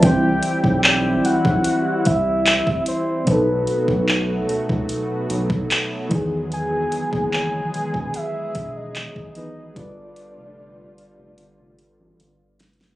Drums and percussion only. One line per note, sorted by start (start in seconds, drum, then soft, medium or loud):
0.03 kick loud
0.03 closed hi-hat medium
0.43 closed hi-hat medium
0.64 kick medium
0.84 clap loud
1.25 closed hi-hat medium
1.45 kick medium
1.64 closed hi-hat medium
2.05 kick medium
2.05 closed hi-hat medium
2.46 clap loud
2.46 closed hi-hat medium
2.67 kick medium
2.86 closed hi-hat medium
3.27 kick loud
3.27 closed hi-hat medium
3.67 closed hi-hat medium
3.88 kick medium
4.09 clap loud
4.49 closed hi-hat medium
4.69 kick medium
4.89 closed hi-hat medium
5.30 closed hi-hat medium
5.50 kick loud
5.71 clap loud
5.71 closed hi-hat medium
6.11 kick loud
6.11 closed hi-hat medium
6.52 closed hi-hat medium
6.92 closed hi-hat medium
7.13 kick medium
7.33 clap loud
7.74 closed hi-hat medium
7.94 kick medium
8.14 closed hi-hat medium
8.55 kick medium
8.55 closed hi-hat medium
8.96 clap loud
8.96 closed hi-hat medium
9.16 kick medium
9.35 closed hi-hat medium
9.76 kick loud
9.76 closed hi-hat medium
10.16 closed hi-hat medium
10.98 closed hi-hat medium
11.38 closed hi-hat medium
11.79 closed hi-hat medium
12.20 closed hi-hat medium
12.59 snare loud
12.59 closed hi-hat medium
12.59 open hi-hat medium
12.73 closed hi-hat medium
12.81 snare loud
12.87 closed hi-hat soft